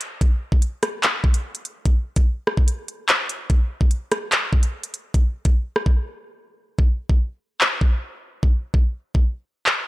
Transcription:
0.01 closed hi-hat
0.21 kick, closed hi-hat
0.52 kick
0.62 closed hi-hat
0.83 cross-stick, closed hi-hat
1.03 clap, closed hi-hat
1.24 kick
1.34 closed hi-hat
1.55 closed hi-hat
1.65 closed hi-hat
1.85 kick, closed hi-hat
2.16 kick, closed hi-hat
2.47 cross-stick
2.57 kick
2.68 closed hi-hat
2.88 closed hi-hat
3.09 clap, closed hi-hat
3.29 closed hi-hat
3.50 kick, closed hi-hat
3.81 kick
3.91 closed hi-hat
4.12 cross-stick, closed hi-hat
4.32 clap, closed hi-hat
4.53 kick
4.63 closed hi-hat
4.83 closed hi-hat
4.94 closed hi-hat
5.14 kick, closed hi-hat
5.45 kick, closed hi-hat
5.76 cross-stick
5.86 kick
6.79 kick
7.09 kick
7.61 clap
7.81 kick
8.43 kick
8.74 kick
9.15 kick
9.66 clap

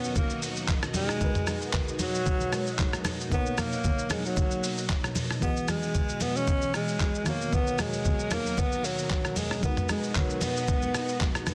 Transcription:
Already playing: D#2 B2 D#3 F#3 B3 C#4 D#4 F#4 A#4
0.04 shaker
0.15 A#3, kick, low conga, shaker
0.30 shaker
0.42 open hi-hat, shaker
0.56 shaker
0.68 kick, clap, high conga, shaker
0.83 cross-stick, shaker
0.94 G#3, open hi-hat, high conga, shaker
1.09 cross-stick, shaker
1.18 G#3 D#4 F#4, kick, low conga, shaker
1.23 A#4 B4
1.35 mid tom, shaker
1.47 cross-stick, open hi-hat, high conga, shaker
1.61 shaker
1.73 kick, clap, low conga, shaker
1.88 shaker
1.99 F#3, open hi-hat, high conga, shaker
2.15 shaker
2.26 kick, low conga, shaker
2.40 high conga, shaker
2.52 G#3 D#4 F#4 A#4 C#5, cross-stick, open hi-hat, shaker
2.67 shaker
2.79 kick, clap, high conga, shaker
2.93 cross-stick, shaker
3.05 cross-stick, open hi-hat, high conga, shaker
3.20 shaker
3.29 B2 F#3 A#3 D#4, kick, low conga, shaker
3.33 B3 A#4 C#5
3.46 shaker
3.58 A#3, cross-stick, open hi-hat, high conga, shaker
3.72 shaker
3.84 kick, low conga, shaker
3.98 shaker
4.10 G#3, cross-stick, open hi-hat, high conga, shaker
4.25 F#3, shaker
4.36 kick, low conga, shaker
4.51 shaker
4.64 open hi-hat, shaker
4.77 shaker
4.89 kick, clap, high conga, shaker
5.04 cross-stick, shaker
5.15 open hi-hat, high conga, shaker
5.31 cross-stick, shaker
5.40 E3 G#3 B3 F#4, kick, low conga, shaker
5.44 G#4 D#5
5.56 shaker
5.68 G#3, cross-stick, open hi-hat, high conga, shaker
5.83 shaker
5.95 kick, low conga, shaker
6.09 shaker
6.20 B3, open hi-hat, high conga, shaker
6.36 C#4, shaker
6.47 kick, low conga, shaker
6.62 shaker
6.74 G#3, cross-stick, open hi-hat, shaker
6.88 shaker
7.00 kick, clap, high conga, shaker
7.15 shaker
7.24 D#2 D#3 F#3 A#3 B3 F#4 A#4, cross-stick, open hi-hat, high conga, shaker
7.28 A#4 C#5
7.41 shaker
7.53 B3, kick, low conga, shaker
7.67 shaker
7.78 G#3, cross-stick, open hi-hat, high conga, shaker
7.93 shaker
8.05 kick, low conga, shaker
8.19 shaker
8.31 A#3, cross-stick, open hi-hat, high conga, shaker
8.46 shaker
8.57 B3, kick, low conga, shaker
8.72 shaker
8.84 F#3, open hi-hat, shaker
8.98 shaker
9.10 kick, clap, high conga, shaker
9.25 cross-stick, shaker
9.36 G#3, open hi-hat, high conga, shaker
9.51 cross-stick, shaker
9.61 B2 G#3 B3 D#4 F#4, kick, low conga, shaker
9.65 A#4 B4
9.77 mid tom, shaker
9.89 G#3, cross-stick, open hi-hat, high conga, shaker
10.03 shaker
10.15 F#3, kick, clap, low conga, shaker
10.30 shaker
10.41 B3, open hi-hat, high conga, shaker
10.57 shaker
10.68 kick, low conga, shaker
10.82 high conga, shaker
10.95 cross-stick, open hi-hat, shaker
11.09 shaker
11.21 kick, clap, high conga, shaker
11.35 cross-stick, shaker
11.46 cross-stick, open hi-hat, high conga, shaker

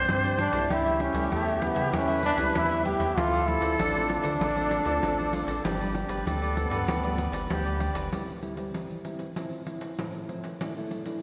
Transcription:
Already playing: G3 C4 D4 G4 C5 D5
0.09 G2 C4, pandeiro
0.23 G3 C4 D4 G4 C5 D5, pandeiro
0.37 D4 G4 C5 D5, pandeiro
0.51 B1 G3 A3 E4 G4 C5 D5, pandeiro
0.69 C#2 C#3 E4 G4 A4 C#5 E5, pandeiro
0.85 A4 C#5 E5, pandeiro
0.99 C#4, muted cavaquinho stroke, pandeiro
1.13 C#2 G3 A3 E4 A4 C#5 E5, pandeiro
1.30 E2 C#3 A3 G4 A4 C#5 E5, pandeiro
1.46 A4 C#5 E5, pandeiro
1.61 G3 A3 B3 E4, muted cavaquinho stroke, pandeiro
1.74 C#3 A4 C#5 E5, pandeiro
1.92 E2 C#3 G3 A3 C#4 E4 G4 A4 B4 C#5 E5, pandeiro
2.07 A4 C#5 E5, pandeiro
2.23 D4, pandeiro
2.36 C#2 G3 A3 E4 A4 C#5 E5, pandeiro
2.55 E2 C#3 E4, pandeiro
2.70 A4 C#5 E5, pandeiro
2.84 G3 A3 E4 G4 A4 C#5 E5, pandeiro
2.99 E2 A4 C#5 E5, pandeiro
3.17 D2 D3 A3 C4 F4 A4 C5 D5, pandeiro
3.33 A4 C5 D5, pandeiro
3.46 A3 C4 E4 F4, muted cavaquinho stroke, pandeiro
3.60 D2 A4 C5 D5, pandeiro
3.77 A1 A2 D4 F4 A4 C5 D5, pandeiro
3.93 A3 C4 F4 A4 C5 D5, pandeiro
4.08 muted cavaquinho stroke, pandeiro
4.22 D3 A4 C5 D5, pandeiro
4.40 A1 D3 F4 A4 C5 D5, pandeiro
4.56 A3 C4 F4 A4 C5 D5, pandeiro
4.71 pandeiro
4.84 D2 A3 C4 F4 A4 C5 D5, pandeiro
5.03 A1 A2, pandeiro
5.18 A4 C5 D5, pandeiro
5.33 A3 C4 F4 A4 C5 D5, pandeiro
5.47 A1 A4 C5 D5, pandeiro
5.64 G1 G2 G3 B3 D4 G4 B4 D5, pandeiro
5.80 G3 B3 D4 G4 B4 D5, pandeiro
5.94 muted cavaquinho stroke, pandeiro
6.08 G1 G4 B4 D5, pandeiro
6.26 D2 D3 G3 B3 D4 G4 A4 B4 D5, pandeiro
6.42 G4 B4 D5, pandeiro
6.56 G3 B3 D4, muted cavaquinho stroke, pandeiro
6.70 G2 G4 B4 D5, pandeiro
6.87 D2 G2 D4 G4 B4 D5, pandeiro
7.03 G3 B3 D4 G4 B4 D5, pandeiro
7.18 pandeiro
7.32 G1 G4 B4 D5, pandeiro
7.50 D2 D3 G3 B3 D4 G4, pandeiro
7.65 G4 B4 D5, pandeiro
7.79 G3 B3 D4 G4 B4 D5, pandeiro
7.94 G1 G4 B4 D5, pandeiro
8.11 A2 G3 C4 E4, pandeiro
8.28 pandeiro
8.42 G3 C4 E4, pandeiro
8.56 G3 C4 E4, pandeiro
8.74 E3, pandeiro
8.91 pandeiro
9.04 G3 C4 E4, pandeiro
9.19 pandeiro
9.36 A2 F3 C4 E4, pandeiro
9.53 pandeiro
9.66 F3 C4 E4, pandeiro
9.81 pandeiro
9.99 A2, pandeiro
10.15 pandeiro
10.29 F3 C4 E4, pandeiro
10.44 pandeiro
10.61 A#2 A3 D4 E4, pandeiro
10.77 A3 D4 E4, pandeiro
10.91 pandeiro
11.06 A3 D4 E4, pandeiro

